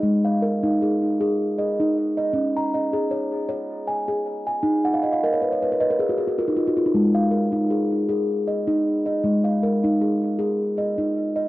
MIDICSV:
0, 0, Header, 1, 2, 480
1, 0, Start_track
1, 0, Tempo, 766284
1, 24, Time_signature, 3, 2, 24, 8
1, 7194, End_track
2, 0, Start_track
2, 0, Title_t, "Steel tongue drum"
2, 0, Program_c, 0, 114
2, 0, Note_on_c, 0, 75, 58
2, 17, Note_on_c, 0, 56, 72
2, 154, Note_on_c, 0, 77, 60
2, 264, Note_on_c, 0, 70, 62
2, 266, Note_off_c, 0, 75, 0
2, 395, Note_on_c, 0, 63, 81
2, 507, Note_off_c, 0, 77, 0
2, 514, Note_on_c, 0, 68, 63
2, 633, Note_off_c, 0, 70, 0
2, 634, Note_off_c, 0, 63, 0
2, 747, Note_off_c, 0, 68, 0
2, 755, Note_on_c, 0, 68, 79
2, 991, Note_off_c, 0, 68, 0
2, 991, Note_on_c, 0, 75, 62
2, 1126, Note_on_c, 0, 63, 73
2, 1353, Note_off_c, 0, 75, 0
2, 1360, Note_off_c, 0, 63, 0
2, 1361, Note_on_c, 0, 75, 61
2, 1439, Note_off_c, 0, 56, 0
2, 1461, Note_on_c, 0, 61, 78
2, 1598, Note_off_c, 0, 75, 0
2, 1608, Note_on_c, 0, 82, 62
2, 1718, Note_on_c, 0, 75, 63
2, 1838, Note_on_c, 0, 68, 79
2, 1950, Note_on_c, 0, 73, 60
2, 1954, Note_off_c, 0, 82, 0
2, 2077, Note_off_c, 0, 68, 0
2, 2080, Note_off_c, 0, 75, 0
2, 2177, Note_off_c, 0, 73, 0
2, 2185, Note_on_c, 0, 73, 77
2, 2426, Note_off_c, 0, 73, 0
2, 2427, Note_on_c, 0, 80, 61
2, 2557, Note_on_c, 0, 68, 72
2, 2791, Note_off_c, 0, 80, 0
2, 2796, Note_off_c, 0, 68, 0
2, 2798, Note_on_c, 0, 80, 63
2, 2880, Note_off_c, 0, 61, 0
2, 2899, Note_on_c, 0, 63, 77
2, 3036, Note_on_c, 0, 78, 66
2, 3037, Note_off_c, 0, 80, 0
2, 3092, Note_on_c, 0, 77, 64
2, 3140, Note_off_c, 0, 78, 0
2, 3149, Note_on_c, 0, 75, 69
2, 3204, Note_off_c, 0, 77, 0
2, 3210, Note_on_c, 0, 77, 66
2, 3267, Note_off_c, 0, 75, 0
2, 3278, Note_on_c, 0, 70, 76
2, 3281, Note_on_c, 0, 75, 72
2, 3322, Note_off_c, 0, 77, 0
2, 3340, Note_on_c, 0, 73, 72
2, 3383, Note_off_c, 0, 75, 0
2, 3392, Note_on_c, 0, 71, 64
2, 3447, Note_off_c, 0, 73, 0
2, 3460, Note_on_c, 0, 73, 65
2, 3509, Note_off_c, 0, 71, 0
2, 3517, Note_off_c, 0, 70, 0
2, 3523, Note_on_c, 0, 71, 69
2, 3568, Note_off_c, 0, 73, 0
2, 3583, Note_on_c, 0, 70, 65
2, 3624, Note_off_c, 0, 71, 0
2, 3636, Note_on_c, 0, 75, 82
2, 3637, Note_on_c, 0, 71, 68
2, 3689, Note_off_c, 0, 70, 0
2, 3699, Note_on_c, 0, 70, 74
2, 3751, Note_off_c, 0, 71, 0
2, 3755, Note_on_c, 0, 68, 72
2, 3807, Note_off_c, 0, 70, 0
2, 3817, Note_on_c, 0, 66, 68
2, 3860, Note_off_c, 0, 68, 0
2, 3870, Note_on_c, 0, 68, 61
2, 3872, Note_off_c, 0, 75, 0
2, 3923, Note_off_c, 0, 66, 0
2, 3931, Note_on_c, 0, 66, 59
2, 3988, Note_off_c, 0, 68, 0
2, 3999, Note_on_c, 0, 65, 66
2, 4002, Note_on_c, 0, 70, 70
2, 4043, Note_off_c, 0, 66, 0
2, 4050, Note_off_c, 0, 63, 0
2, 4058, Note_on_c, 0, 63, 65
2, 4102, Note_off_c, 0, 65, 0
2, 4113, Note_on_c, 0, 65, 64
2, 4166, Note_off_c, 0, 63, 0
2, 4181, Note_on_c, 0, 66, 65
2, 4229, Note_off_c, 0, 65, 0
2, 4238, Note_off_c, 0, 70, 0
2, 4240, Note_on_c, 0, 65, 67
2, 4288, Note_off_c, 0, 66, 0
2, 4296, Note_on_c, 0, 63, 63
2, 4342, Note_off_c, 0, 65, 0
2, 4350, Note_on_c, 0, 56, 76
2, 4405, Note_off_c, 0, 63, 0
2, 4477, Note_on_c, 0, 77, 59
2, 4580, Note_on_c, 0, 70, 63
2, 4588, Note_off_c, 0, 56, 0
2, 4711, Note_on_c, 0, 63, 80
2, 4827, Note_on_c, 0, 68, 65
2, 4828, Note_off_c, 0, 77, 0
2, 4951, Note_off_c, 0, 70, 0
2, 4953, Note_off_c, 0, 63, 0
2, 5060, Note_off_c, 0, 68, 0
2, 5067, Note_on_c, 0, 68, 73
2, 5307, Note_off_c, 0, 68, 0
2, 5309, Note_on_c, 0, 75, 58
2, 5434, Note_on_c, 0, 63, 72
2, 5667, Note_off_c, 0, 75, 0
2, 5673, Note_off_c, 0, 63, 0
2, 5675, Note_on_c, 0, 75, 60
2, 5786, Note_on_c, 0, 56, 80
2, 5914, Note_on_c, 0, 77, 62
2, 6026, Note_off_c, 0, 75, 0
2, 6032, Note_on_c, 0, 70, 69
2, 6163, Note_on_c, 0, 63, 83
2, 6266, Note_off_c, 0, 77, 0
2, 6272, Note_on_c, 0, 68, 61
2, 6396, Note_off_c, 0, 70, 0
2, 6397, Note_off_c, 0, 63, 0
2, 6499, Note_off_c, 0, 68, 0
2, 6506, Note_on_c, 0, 68, 80
2, 6745, Note_off_c, 0, 68, 0
2, 6751, Note_on_c, 0, 75, 63
2, 6877, Note_on_c, 0, 63, 69
2, 7107, Note_off_c, 0, 75, 0
2, 7114, Note_off_c, 0, 63, 0
2, 7114, Note_on_c, 0, 75, 60
2, 7194, Note_off_c, 0, 56, 0
2, 7194, Note_off_c, 0, 75, 0
2, 7194, End_track
0, 0, End_of_file